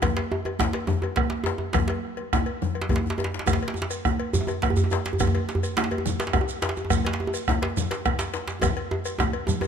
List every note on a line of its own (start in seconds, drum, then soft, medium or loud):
0.02 bombo rim medium
0.02 bombo low medium
0.02 cowbell medium
0.02 djembe slap medium
0.02 djembe tone loud
0.02 high conga medium
0.02 djembe bass medium
0.02 low conga medium
0.17 cowbell medium
0.17 djembe slap medium
0.31 djembe slap soft
0.31 djembe tone loud
0.45 cowbell soft
0.45 djembe tone medium
0.59 bombo rim medium
0.59 bombo low medium
0.59 djembe slap medium
0.59 djembe slap loud
0.59 high conga medium
0.59 djembe tone loud
0.73 cowbell medium
0.73 djembe slap medium
0.73 djembe slap soft
0.87 djembe slap soft
0.87 djembe tone loud
0.87 low conga medium
0.87 djembe bass medium
1.02 cowbell soft
1.02 djembe tone medium
1.16 bombo rim loud
1.16 bombo low loud
1.16 cowbell medium
1.16 djembe slap medium
1.16 high conga medium
1.30 djembe slap medium
1.44 cowbell soft
1.44 djembe slap medium
1.44 djembe tone loud
1.58 djembe tone medium
1.73 bombo rim medium
1.73 bombo low loud
1.73 cowbell medium
1.73 djembe slap medium
1.73 djembe tone medium
1.73 high conga medium
1.73 djembe bass medium
1.73 low conga medium
1.88 bombo rim soft
1.88 cowbell soft
1.88 djembe slap medium
1.90 djembe slap soft
2.05 bombo rim soft
2.17 cowbell soft
2.17 djembe slap soft
2.17 high conga soft
2.33 bombo rim medium
2.33 bombo low medium
2.33 djembe slap medium
2.33 high conga medium
2.33 djembe tone medium
2.46 cowbell soft
2.46 high conga soft
2.62 djembe slap soft
2.62 low conga medium
2.62 djembe bass medium
2.74 bombo rim soft
2.74 cowbell soft
2.81 djembe slap medium
2.89 bombo low loud
2.89 cowbell soft
2.89 djembe tone medium
2.89 high conga medium
2.91 djembe tone medium
2.96 djembe slap medium
3.04 bombo rim soft
3.04 djembe bass soft
3.10 djembe slap medium
3.18 cowbell soft
3.18 djembe slap medium
3.18 djembe tone medium
3.18 high conga soft
3.24 djembe slap medium
3.34 djembe slap medium
3.39 djembe slap medium
3.46 bombo rim medium
3.46 bombo low medium
3.46 cowbell medium
3.46 djembe tone medium
3.46 high conga medium
3.46 low conga medium
3.46 shekere medium
3.49 djembe tone medium
3.49 djembe bass medium
3.53 djembe slap medium
3.63 cowbell soft
3.68 djembe slap medium
3.74 djembe slap soft
3.74 djembe tone medium
3.74 shekere soft
3.82 djembe slap medium
3.90 cowbell soft
3.90 shekere soft
4.05 bombo rim loud
4.05 bombo low medium
4.05 high conga medium
4.05 djembe tone medium
4.20 cowbell medium
4.20 djembe slap soft
4.33 djembe slap soft
4.33 djembe bass loud
4.33 low conga medium
4.33 shekere medium
4.35 djembe bass medium
4.40 djembe tone medium
4.47 cowbell medium
4.47 djembe tone medium
4.47 shekere soft
4.62 bombo rim loud
4.62 bombo low loud
4.62 cowbell medium
4.62 djembe slap medium
4.62 high conga medium
4.62 djembe tone medium
4.70 djembe bass medium
4.76 djembe bass loud
4.76 shekere soft
4.84 djembe tone medium
4.91 cowbell medium
4.91 djembe slap medium
4.91 djembe tone medium
4.91 shekere soft
5.05 djembe slap medium
5.05 shekere soft
5.13 djembe bass medium
5.19 bombo rim loud
5.19 bombo low loud
5.19 cowbell medium
5.19 djembe tone medium
5.19 high conga medium
5.19 djembe bass medium
5.19 low conga medium
5.19 djembe bass loud
5.19 shekere medium
5.27 djembe tone medium
5.35 cowbell medium
5.35 djembe tone medium
5.49 djembe slap medium
5.49 djembe slap soft
5.49 shekere soft
5.55 djembe bass medium
5.63 cowbell medium
5.63 shekere soft
5.77 bombo rim loud
5.77 djembe slap loud
5.77 djembe slap medium
5.77 high conga medium
5.77 djembe tone medium
5.84 djembe slap medium
5.91 cowbell medium
5.91 djembe slap soft
5.91 djembe tone medium
5.98 djembe tone medium
6.06 djembe slap soft
6.06 djembe bass medium
6.06 low conga medium
6.06 shekere medium
6.20 cowbell medium
6.20 djembe slap loud
6.20 shekere soft
6.27 djembe slap medium
6.33 bombo rim loud
6.33 bombo low loud
6.33 cowbell medium
6.33 high conga medium
6.33 djembe tone medium
6.41 djembe tone medium
6.49 shekere soft
6.62 cowbell soft
6.62 djembe slap loud
6.62 djembe slap medium
6.62 shekere soft
6.69 djembe slap medium
6.76 djembe tone medium
6.76 shekere soft
6.85 djembe tone medium
6.90 bombo rim loud
6.90 bombo low loud
6.90 cowbell medium
6.90 djembe tone medium
6.90 high conga medium
6.90 djembe bass medium
6.90 low conga medium
6.90 shekere medium
7.05 cowbell medium
7.05 djembe slap loud
7.13 djembe slap medium
7.19 djembe slap soft
7.19 djembe tone medium
7.27 djembe tone medium
7.34 cowbell soft
7.34 shekere medium
7.48 bombo rim loud
7.48 bombo low loud
7.48 djembe slap medium
7.48 high conga medium
7.48 djembe tone medium
7.62 cowbell medium
7.62 djembe slap loud
7.62 djembe slap soft
7.77 djembe slap soft
7.77 djembe bass medium
7.77 low conga medium
7.77 shekere medium
7.91 cowbell medium
7.91 djembe slap medium
7.91 shekere soft
8.05 bombo rim loud
8.05 bombo low loud
8.05 cowbell medium
8.05 djembe tone medium
8.05 high conga medium
8.19 djembe slap loud
8.19 shekere soft
8.34 cowbell medium
8.34 djembe slap medium
8.34 shekere soft
8.48 djembe slap medium
8.48 shekere soft
8.62 bombo rim medium
8.62 bombo low loud
8.62 cowbell medium
8.62 djembe slap soft
8.62 djembe tone loud
8.62 high conga medium
8.62 low conga medium
8.62 shekere medium
8.63 djembe tone medium
8.63 djembe bass medium
8.77 cowbell medium
8.77 djembe slap soft
8.91 djembe tone loud
9.05 bombo rim soft
9.05 cowbell medium
9.05 shekere soft
9.18 bombo rim loud
9.18 bombo low loud
9.18 djembe slap medium
9.18 djembe tone loud
9.18 shekere soft
9.20 djembe tone medium
9.20 high conga medium
9.33 cowbell medium
9.33 high conga soft
9.47 djembe slap soft
9.47 djembe tone loud
9.47 low conga medium
9.47 djembe bass medium
9.47 shekere medium
9.61 cowbell medium
9.61 djembe tone loud
9.61 djembe bass soft
9.61 shekere soft